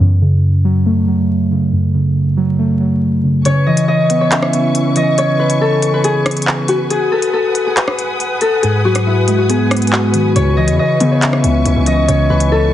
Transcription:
0.00 synth keys F#2
0.22 synth keys C#3
0.65 synth keys F#3
0.86 synth keys A3
1.08 synth keys F#3
1.51 synth keys C#3
1.72 synth keys F#2
1.94 synth keys C#3
2.37 synth keys F#3
2.59 synth keys A3
2.81 synth keys F#3
3.24 synth keys C#3
3.45 synth keys C#3, string section E4 B4 G#5 C#6, harp C#5, closed hi-hat
3.66 synth keys E3, harp D#5
3.77 closed hi-hat
3.88 harp D#5
4.10 synth keys B3, closed hi-hat
4.21 harp C#5
4.31 synth keys C#4, harp E5, clap, closed hi-hat
4.42 cross-stick
4.53 synth keys B3, closed hi-hat
4.75 closed hi-hat
4.96 synth keys E3, harp D#5, closed hi-hat
5.18 harp C#5, closed hi-hat
5.40 harp B4
5.50 closed hi-hat
5.61 harp A4
5.82 closed hi-hat
5.94 harp B4
6.04 harp G#4, closed hi-hat
6.26 cross-stick, closed hi-hat
6.31 closed hi-hat
6.37 closed hi-hat
6.42 closed hi-hat
6.47 clap
6.68 harp F#4, closed hi-hat
6.90 harp G#4, string section F#5 D#6, closed hi-hat
7.12 harp A4
7.22 closed hi-hat
7.33 harp A4
7.55 closed hi-hat
7.66 harp G#4
7.77 harp B4, clap, closed hi-hat
7.88 cross-stick
7.99 closed hi-hat
8.20 closed hi-hat
8.41 harp A4, closed hi-hat
8.63 synth keys G#2, harp G#4, closed hi-hat
8.85 synth keys F#3, harp F#4
8.95 cross-stick, closed hi-hat
9.06 harp E4
9.28 synth keys G#3, closed hi-hat
9.38 harp F#4
9.49 synth keys B3, harp G#4, closed hi-hat
9.71 synth keys G#3, cross-stick, closed hi-hat
9.76 closed hi-hat
9.82 closed hi-hat
9.87 closed hi-hat
9.92 harp F#4, clap
10.14 synth keys D#3, closed hi-hat
10.36 808-style bass C#2, synth keys C#3, string section E4 C#6, harp C#5, closed hi-hat
10.57 synth keys E3, harp D#5
10.68 808-style bass E2, closed hi-hat
10.79 harp D#5
11.00 808-style bass C#3, synth keys B3, closed hi-hat
11.12 harp C#5
11.22 synth keys C#4, harp E5, clap, closed hi-hat
11.33 cross-stick
11.44 808-style bass C#2, synth keys B3, closed hi-hat
11.65 808-style bass C#2, closed hi-hat
11.76 808-style bass C#2
11.86 synth keys E3, harp D#5, closed hi-hat
12.08 808-style bass C#2, synth keys C#3, harp C#5, closed hi-hat
12.30 808-style bass C#2, synth keys E3, harp B4
12.40 closed hi-hat
12.52 harp A4

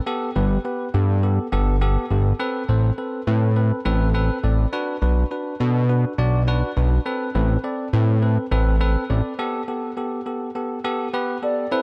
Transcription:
0.06 tine electric piano B3 G4 A4
0.35 analog synth bass G1, tine electric piano B3 G4 B4
0.65 tine electric piano B3 G4 B4
0.94 analog synth bass G2, tine electric piano B3 G4 A4
1.23 tine electric piano B3 G4 A4
1.52 analog synth bass G1, tine electric piano B3 G4 A4
1.81 tine electric piano B3 G4 A4
2.10 analog synth bass G1, tine electric piano B3 G4 A4
2.39 tine electric piano C4 A4 B4
2.69 analog synth bass A1, tine electric piano C4 A4 C5
2.98 tine electric piano C4 A4 B4
3.27 analog synth bass A2, tine electric piano C4 A4 B4
3.56 tine electric piano C4 A4 B4
3.85 analog synth bass A1, tine electric piano C4 A4 B4
4.14 tine electric piano C4 A4 B4
4.43 analog synth bass A1, tine electric piano C4 A4 D5
4.73 tine electric piano D4 F#4 B4
5.02 analog synth bass B1, tine electric piano D4 F#4 B4
5.31 tine electric piano D4 F#4 B4
5.60 analog synth bass B2, tine electric piano D4 F#4 A4
5.89 tine electric piano D4 F#4 B4
6.18 analog synth bass B1, tine electric piano D4 F#4 D5
6.47 tine electric piano D4 F#4 B4
6.77 analog synth bass B1, tine electric piano D4 F#4 B4
7.06 tine electric piano C4 A4 B4
7.35 analog synth bass A1, tine electric piano C4 A4 B4
7.64 tine electric piano C4 A4 D5
7.93 analog synth bass A2, tine electric piano C4 A4 B4
8.22 tine electric piano C4 A4 B4
8.51 analog synth bass A1, tine electric piano C4 A4 B4
8.81 tine electric piano C4 A4 B4
9.10 analog synth bass A1, tine electric piano C4 A4 D5
9.39 tine electric piano B3 G4 A4
9.68 tine electric piano B3 G4 A4
9.97 tine electric piano B3 G4 A4
10.26 tine electric piano B3 G4 A4
10.55 tine electric piano B3 G4 A4
10.84 tine electric piano B3 G4 A4
11.13 tine electric piano B3 G4 B4
11.42 tine electric piano B3 G4 A4, soft synth lead D5
11.72 tine electric piano C4 E4 A4 B4, soft synth lead C5

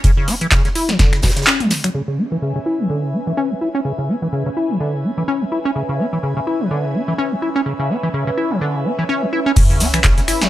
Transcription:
0.04 acid bass C#3, kick, closed hi-hat
0.17 acid bass C#3
0.28 acid bass C#4, snare, closed hi-hat, open hi-hat
0.41 acid bass E3, closed hi-hat
0.52 acid bass C#3, kick, snare, clap, closed hi-hat
0.65 acid bass C#3, snare, closed hi-hat
0.75 acid bass E4, closed hi-hat, open hi-hat
0.89 acid bass E3, snare, closed hi-hat
0.99 acid bass D3, kick, snare, closed hi-hat
1.13 acid bass C#3, finger snap, snare, closed hi-hat
1.22 acid bass B2, kick, snare, closed hi-hat, open hi-hat
1.29 snare, closed hi-hat
1.36 acid bass C#3, snare, closed hi-hat
1.42 snare, closed hi-hat
1.47 acid bass C#4, snare, clap, closed hi-hat
1.60 acid bass G#3, closed hi-hat, mid tom
1.70 acid bass C#4, snare, closed hi-hat, open hi-hat
1.84 acid bass F#3, finger snap, closed hi-hat
1.94 acid bass C#3, analog synth pad C#4
2.08 acid bass C#3
2.14 acid bass C#4, analog synth pad B4 E5 G#5
2.32 acid bass E3
2.42 acid bass C#3
2.56 acid bass C#3
2.66 acid bass E4
2.79 acid bass E3
2.90 acid bass D3
3.03 acid bass C#3
3.14 acid bass C#4
3.27 acid bass E3
3.37 acid bass C#4
3.51 acid bass C#3
3.61 acid bass E4
3.75 acid bass C#4
3.85 acid bass C#3
3.98 acid bass C#3
4.09 acid bass C#4
4.22 acid bass E3
4.33 acid bass C#3
4.46 acid bass C#3
4.57 acid bass E4
4.70 acid bass E3
4.80 acid bass D3
4.94 acid bass C#3
5.04 acid bass C#4
5.18 acid bass E3
5.28 acid bass C#4
5.41 acid bass C#3
5.52 acid bass E4
5.65 acid bass C#4
5.76 acid bass C#3
5.89 acid bass C#3
5.99 acid bass C#4
6.13 acid bass E3
6.23 acid bass C#3
6.37 acid bass C#3
6.47 acid bass E4
6.60 acid bass E3
6.71 acid bass D3
6.84 acid bass C#3
6.95 acid bass C#4
7.08 acid bass E3
7.18 acid bass C#4
7.32 acid bass C#3
7.42 acid bass E4
7.56 acid bass C#4
7.66 acid bass C#3
7.79 acid bass C#3
7.90 acid bass C#4
8.03 acid bass E3
8.14 acid bass C#3
8.27 acid bass C#3
8.37 acid bass E4
8.51 acid bass E3
8.61 acid bass D3
8.75 acid bass C#3
8.85 acid bass C#4
8.99 acid bass E3
9.09 acid bass C#4
9.22 acid bass C#3
9.33 acid bass E4
9.46 acid bass C#4
9.56 acid bass C#3, kick, closed hi-hat, crash, sub drop, shaker
9.70 acid bass C#3, closed hi-hat, shaker
9.80 acid bass C#4, snare, closed hi-hat, open hi-hat, shaker
9.94 acid bass E3, finger snap, closed hi-hat, shaker
10.04 acid bass C#3, kick, snare, clap, closed hi-hat, shaker
10.18 acid bass C#3, snare, closed hi-hat, shaker
10.28 acid bass E4, finger snap, closed hi-hat, open hi-hat, shaker
10.41 acid bass E3, snare, closed hi-hat, shaker

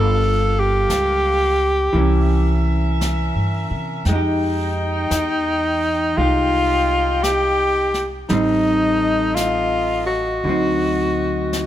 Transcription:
Already playing: upright bass G1, hollow-body jazz guitar G3 A#3 F4 A4, saxophone section A#3 A4 F5, alto saxophone A4
0.59 alto saxophone G4
0.89 upright bass C#2, brush sweep, snare, hi-hat pedal
1.93 upright bass C2, hollow-body jazz guitar E3 A#3, saxophone section C#4 A#4 E5, brush sweep
1.98 hollow-body jazz guitar C#4
3.01 brush sweep, snare, hi-hat pedal
3.35 upright bass G2
3.71 upright bass C3
4.05 upright bass F2, saxophone section D#4 G5, alto saxophone D#4, brush sweep, snare
4.09 hollow-body jazz guitar G#3 D#4
4.16 hollow-body jazz guitar G4
5.11 upright bass E2, brush sweep, snare, hi-hat pedal
6.15 upright bass C2, hollow-body jazz guitar G#3, alto saxophone F4, saxophone section G5, brush sweep
6.19 hollow-body jazz guitar D#4 G4
7.23 alto saxophone G4, brush sweep, snare, hi-hat pedal
7.94 snare
8.28 upright bass A1, hollow-body jazz guitar G3, saxophone section C4 A4 D#5, alto saxophone D#4, brush sweep, snare
8.33 hollow-body jazz guitar C4 D#4
9.35 alto saxophone F4, brush sweep, snare, hi-hat pedal
10.06 alto saxophone F#4
10.43 upright bass D2, hollow-body jazz guitar D3 F#3, saxophone section F#4 D#5, brush sweep
10.49 hollow-body jazz guitar C4 D#4
11.53 brush sweep, snare, hi-hat pedal

